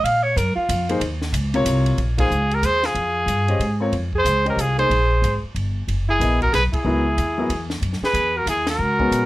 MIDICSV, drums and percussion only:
0, 0, Header, 1, 2, 480
1, 0, Start_track
1, 0, Tempo, 324500
1, 47, Time_signature, 3, 2, 24, 8
1, 13691, End_track
2, 0, Start_track
2, 0, Title_t, "Drums"
2, 80, Note_on_c, 9, 51, 80
2, 228, Note_off_c, 9, 51, 0
2, 554, Note_on_c, 9, 44, 59
2, 554, Note_on_c, 9, 51, 76
2, 702, Note_off_c, 9, 44, 0
2, 702, Note_off_c, 9, 51, 0
2, 1025, Note_on_c, 9, 44, 63
2, 1025, Note_on_c, 9, 51, 90
2, 1173, Note_off_c, 9, 44, 0
2, 1173, Note_off_c, 9, 51, 0
2, 1321, Note_on_c, 9, 51, 53
2, 1469, Note_off_c, 9, 51, 0
2, 1497, Note_on_c, 9, 51, 73
2, 1645, Note_off_c, 9, 51, 0
2, 1799, Note_on_c, 9, 38, 44
2, 1947, Note_off_c, 9, 38, 0
2, 1978, Note_on_c, 9, 44, 56
2, 1978, Note_on_c, 9, 51, 78
2, 2126, Note_off_c, 9, 44, 0
2, 2126, Note_off_c, 9, 51, 0
2, 2276, Note_on_c, 9, 51, 44
2, 2424, Note_off_c, 9, 51, 0
2, 2451, Note_on_c, 9, 44, 65
2, 2451, Note_on_c, 9, 51, 87
2, 2599, Note_off_c, 9, 44, 0
2, 2599, Note_off_c, 9, 51, 0
2, 2752, Note_on_c, 9, 51, 53
2, 2900, Note_off_c, 9, 51, 0
2, 2929, Note_on_c, 9, 51, 55
2, 3077, Note_off_c, 9, 51, 0
2, 3231, Note_on_c, 9, 36, 81
2, 3231, Note_on_c, 9, 51, 76
2, 3379, Note_off_c, 9, 36, 0
2, 3379, Note_off_c, 9, 51, 0
2, 3419, Note_on_c, 9, 44, 50
2, 3567, Note_off_c, 9, 44, 0
2, 3717, Note_on_c, 9, 51, 40
2, 3865, Note_off_c, 9, 51, 0
2, 3891, Note_on_c, 9, 44, 53
2, 3891, Note_on_c, 9, 51, 71
2, 4039, Note_off_c, 9, 44, 0
2, 4039, Note_off_c, 9, 51, 0
2, 4192, Note_on_c, 9, 38, 41
2, 4195, Note_on_c, 9, 51, 47
2, 4340, Note_off_c, 9, 38, 0
2, 4343, Note_off_c, 9, 51, 0
2, 4368, Note_on_c, 9, 51, 54
2, 4516, Note_off_c, 9, 51, 0
2, 4852, Note_on_c, 9, 44, 58
2, 4852, Note_on_c, 9, 51, 63
2, 5000, Note_off_c, 9, 44, 0
2, 5000, Note_off_c, 9, 51, 0
2, 5151, Note_on_c, 9, 51, 39
2, 5299, Note_off_c, 9, 51, 0
2, 5333, Note_on_c, 9, 51, 63
2, 5481, Note_off_c, 9, 51, 0
2, 5808, Note_on_c, 9, 51, 54
2, 5956, Note_off_c, 9, 51, 0
2, 6107, Note_on_c, 9, 36, 47
2, 6254, Note_off_c, 9, 36, 0
2, 6294, Note_on_c, 9, 44, 58
2, 6294, Note_on_c, 9, 51, 66
2, 6442, Note_off_c, 9, 44, 0
2, 6442, Note_off_c, 9, 51, 0
2, 6600, Note_on_c, 9, 51, 39
2, 6748, Note_off_c, 9, 51, 0
2, 6784, Note_on_c, 9, 44, 58
2, 6784, Note_on_c, 9, 51, 68
2, 6932, Note_off_c, 9, 44, 0
2, 6932, Note_off_c, 9, 51, 0
2, 7082, Note_on_c, 9, 51, 43
2, 7230, Note_off_c, 9, 51, 0
2, 7266, Note_on_c, 9, 51, 59
2, 7413, Note_off_c, 9, 51, 0
2, 7746, Note_on_c, 9, 44, 43
2, 7746, Note_on_c, 9, 51, 62
2, 7894, Note_off_c, 9, 44, 0
2, 7894, Note_off_c, 9, 51, 0
2, 8223, Note_on_c, 9, 51, 63
2, 8371, Note_off_c, 9, 51, 0
2, 8704, Note_on_c, 9, 51, 62
2, 8852, Note_off_c, 9, 51, 0
2, 9188, Note_on_c, 9, 44, 56
2, 9188, Note_on_c, 9, 51, 65
2, 9336, Note_off_c, 9, 44, 0
2, 9336, Note_off_c, 9, 51, 0
2, 9480, Note_on_c, 9, 36, 47
2, 9493, Note_on_c, 9, 51, 40
2, 9628, Note_off_c, 9, 36, 0
2, 9641, Note_off_c, 9, 51, 0
2, 9665, Note_on_c, 9, 38, 35
2, 9668, Note_on_c, 9, 44, 55
2, 9668, Note_on_c, 9, 51, 75
2, 9813, Note_off_c, 9, 38, 0
2, 9816, Note_off_c, 9, 44, 0
2, 9816, Note_off_c, 9, 51, 0
2, 9959, Note_on_c, 9, 36, 86
2, 9963, Note_on_c, 9, 51, 69
2, 10107, Note_off_c, 9, 36, 0
2, 10111, Note_off_c, 9, 51, 0
2, 10620, Note_on_c, 9, 44, 53
2, 10620, Note_on_c, 9, 51, 60
2, 10768, Note_off_c, 9, 44, 0
2, 10768, Note_off_c, 9, 51, 0
2, 11093, Note_on_c, 9, 51, 63
2, 11241, Note_off_c, 9, 51, 0
2, 11389, Note_on_c, 9, 38, 50
2, 11537, Note_off_c, 9, 38, 0
2, 11575, Note_on_c, 9, 51, 62
2, 11723, Note_off_c, 9, 51, 0
2, 11728, Note_on_c, 9, 38, 27
2, 11876, Note_off_c, 9, 38, 0
2, 11888, Note_on_c, 9, 38, 46
2, 12036, Note_off_c, 9, 38, 0
2, 12048, Note_on_c, 9, 44, 49
2, 12048, Note_on_c, 9, 51, 62
2, 12196, Note_off_c, 9, 44, 0
2, 12196, Note_off_c, 9, 51, 0
2, 12530, Note_on_c, 9, 44, 60
2, 12530, Note_on_c, 9, 51, 73
2, 12678, Note_off_c, 9, 44, 0
2, 12678, Note_off_c, 9, 51, 0
2, 12820, Note_on_c, 9, 38, 77
2, 12823, Note_on_c, 9, 51, 66
2, 12968, Note_off_c, 9, 38, 0
2, 12971, Note_off_c, 9, 51, 0
2, 13306, Note_on_c, 9, 36, 58
2, 13454, Note_off_c, 9, 36, 0
2, 13494, Note_on_c, 9, 44, 58
2, 13494, Note_on_c, 9, 51, 65
2, 13642, Note_off_c, 9, 44, 0
2, 13642, Note_off_c, 9, 51, 0
2, 13691, End_track
0, 0, End_of_file